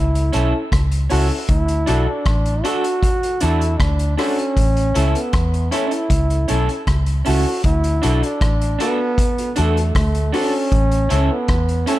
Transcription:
Already playing: C#2 E4
0.15 E4 A4, closed hi-hat
0.33 B1 C#4 E4 A4, closed hi-hat
0.72 C#2, kick, cross-stick, closed hi-hat
0.92 closed hi-hat
1.10 C#2 C#4 E4 F#4 A4, open hi-hat
1.49 D2 E4, kick, closed hi-hat
1.68 closed hi-hat
1.86 B1 D4 F#4 A4, closed hi-hat
2.08 D4
2.25 A1, kick, cross-stick, closed hi-hat
2.46 closed hi-hat
2.64 D4 F#4 A4, closed hi-hat
2.84 F#4 A4, closed hi-hat
3.03 kick, closed hi-hat
3.23 F#4 A4, closed hi-hat
3.41 E2 D4 E4 F#4 A4, closed hi-hat
3.61 closed hi-hat
3.79 D2 D4, kick, cross-stick, closed hi-hat
3.99 closed hi-hat
4.17 C#4 D4 F#4 A4, cross-stick, open hi-hat
4.38 closed hi-hat
4.57 A1, kick, closed hi-hat
4.77 closed hi-hat
4.94 C#2 C#4 E4 A4, closed hi-hat
5.15 B3, closed hi-hat
5.33 E2, kick, cross-stick, closed hi-hat
5.54 closed hi-hat
5.71 C#4 E4 A4, closed hi-hat
5.91 E4 A4, closed hi-hat
6.10 C#2, kick, closed hi-hat
6.30 E4 A4, closed hi-hat
6.48 B1 C#4 E4 A4, closed hi-hat
6.69 closed hi-hat
6.87 C#2, kick, cross-stick, closed hi-hat
7.06 closed hi-hat
7.25 C#2 C#4 E4 F#4 A4, open hi-hat
7.64 D2 E4, kick, closed hi-hat
7.84 closed hi-hat
8.02 B1 D4 F#4 A4, closed hi-hat
8.23 D4, closed hi-hat
8.41 A1, kick, cross-stick, closed hi-hat
8.61 closed hi-hat
8.79 B3 D4 F#4 A4, closed hi-hat
9.00 F#4 A4
9.18 kick, closed hi-hat
9.38 F#4 A4, closed hi-hat
9.56 E2 A3 D4 F#4 A4, closed hi-hat
9.77 closed hi-hat
9.95 D2 A3, kick, cross-stick, closed hi-hat
10.15 closed hi-hat
10.32 C#4 D4 F#4 A4, open hi-hat
10.72 A1, kick, closed hi-hat
10.91 closed hi-hat
11.09 C#2 C#4 E4 A4, closed hi-hat
11.32 B3
11.48 E2, kick, cross-stick, closed hi-hat
11.69 closed hi-hat
11.86 C#4 E4 A4, closed hi-hat

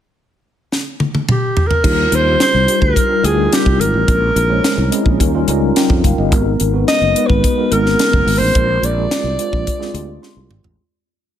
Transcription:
0.72 snare
1.00 high tom
1.15 high tom
1.29 G4, mid tom
1.57 floor tom
1.67 A#4, floor tom
1.83 D#2 G3 D4 D#4 F4 A#4, kick, crash
2.12 D#2 C5, closed hi-hat
2.25 G3 D4 D#4 F4 G4
2.40 C5, snare, closed hi-hat
2.54 C2
2.67 G3 D4 D#4 F4 G4, closed hi-hat
2.81 D2 A#4, kick
2.96 kick, closed hi-hat
3.09 G3 D4 D#4 F4 A#4
3.23 D2 G3 D4 D#4 F4 G4 G#4, closed hi-hat
3.53 G4, snare, closed hi-hat
3.66 C2, kick
3.79 G#1 A#4, closed hi-hat
3.94 A1
4.07 A#1 G#3 C4 C#4 E4 A#4, kick, closed hi-hat
4.36 A#1, closed hi-hat
4.49 G#3 C#4 E4 C5 C#5
4.64 snare, closed hi-hat
4.78 C2
4.91 G#3 C4 C#4 E4 G#4, closed hi-hat
5.06 A#1, kick
5.19 D#2 G3 C#4 D#4 F4 A#4, kick, closed hi-hat
5.34 G3 C#4 D#4 F4 A#4
5.48 C#2 G3 C#4 D#4 F4 A#4, closed hi-hat
5.76 A#4 G5, snare, closed hi-hat
5.90 F2, kick
6.04 F#1 F5, kick, closed hi-hat
6.18 G1 G4 D#5
6.31 G#1 G#3 B3 D#4 F#4 A#4, kick, closed hi-hat
6.60 G#1, closed hi-hat
6.73 G#3 B3 D#4 F#4 B4
6.88 D#5, snare, closed hi-hat
7.01 F#1
7.15 G#3 B3 D#4 F#4 B4, closed hi-hat
7.27 G#1 B4, kick
7.44 kick, closed hi-hat
7.57 G#3 B3 D#4 F#4 A#4
7.71 G#1 G#3 B3 D#4 F#4 A#4, closed hi-hat
7.86 snare
7.99 snare, closed hi-hat
8.13 F#1, kick
8.27 G#1, open hi-hat
8.38 A1 C5
8.54 A#1 G#3 C4 D4 F4 A#4, kick, closed hi-hat
8.82 A#1 D5, closed hi-hat
8.97 G#3 C4 D4 F4 G4
9.11 snare, closed hi-hat
9.24 C2
9.38 G#3 C4 D4 F4 C5, closed hi-hat
9.53 A#1, kick
9.67 kick, closed hi-hat
9.79 G#3 C4 D4 F4 G#4, snare
9.94 D2 G#3 C4 D4 F4 G4, closed hi-hat
10.23 C6, snare
10.36 C2
10.51 G#1, mid tom
10.64 A1, floor tom

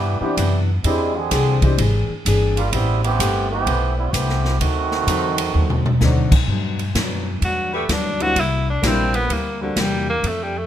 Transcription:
Already playing: G2 C3 E3 B3 D4 G4
0.20 E3 B3 C4 D4 G4, muted upright bass stroke
0.37 F#2 C3 E3 B3 D4, kick, hi-hat pedal, ride
0.84 E2 E3 G#3 C4 D4 E4 G4 G#4, kick, ride
1.16 D3 C4 G4 G#4
1.31 C2 E3 C4 D4 G#4, kick, snare, hi-hat pedal, ride
1.62 E3 G#3 C4 D4 G4, kick, ride
1.78 G#1 E3 C4 D4 G#4, kick, ride
2.09 muted upright bass stroke
2.25 G1 E3 C4 D4 G#4, kick, hi-hat pedal, ride
2.57 G3 A#3 D4 F4, ride
2.73 A1 G3 A3 B3 C4 E4 G4 B4, kick, ride
3.04 E3 B3 C4 G4, ride
3.19 G1 A3 C4 G4 B4, kick, hi-hat pedal, ride
3.51 E3 B3 C4 G4
3.67 B1 A3 C4 G4 B4, kick, ride
3.98 G3 B3 C4 E4
4.13 C2 E3 A3 B3 C4 G4 B4, kick, hi-hat pedal, ride
4.29 snare
4.45 snare
4.60 D2 D3 D#3 F#3 A3 C4 D#4 F#4, kick, ride
4.91 snare
5.07 E2 D3 F#3 C4 D#4, kick, hi-hat pedal, ride
5.38 ride
5.54 D#2 D3 F#3 C4 D#4, floor tom
5.70 mid tom
5.86 mid tom
6.01 D2 D3 D#3 F#3 A3 C4 D4 D#4 F#4, snare, hi-hat pedal
6.32 kick, crash
6.48 G2 F#3 B3 D4, kick
6.79 ride
6.95 F#2 G2 F#3 B3 D4, kick, snare, hi-hat pedal, ride
7.41 E2 G2 F#3 B3 D4 F#4, kick, ride
7.73 G3 A3 D4 F#4 B4
7.89 D2 G2 F#3 B3 D4, kick, snare, hi-hat pedal, ride
7.93 D4
8.20 G3 A#3 C4 D4 E4 F#4, ride
8.36 C2 C3 G3 A#3 E4, kick, ride
8.40 E4
8.70 D4
8.82 A#1 C3 G3 A#3 C4 D4 E4 A#4, kick, snare, hi-hat pedal, ride
8.87 C4
9.14 B3, ride
9.29 D2 C3 G3 A#3 E4, kick, ride
9.61 D3 G3 A#3 C4 D4 F#4
9.76 E2 C3 G3 A#3 E4, kick, snare, hi-hat pedal, ride
9.80 G3
10.10 A#3
10.23 F2 F3 C4 D4 A4, kick, ride
10.28 A3
10.43 G3
10.58 A3

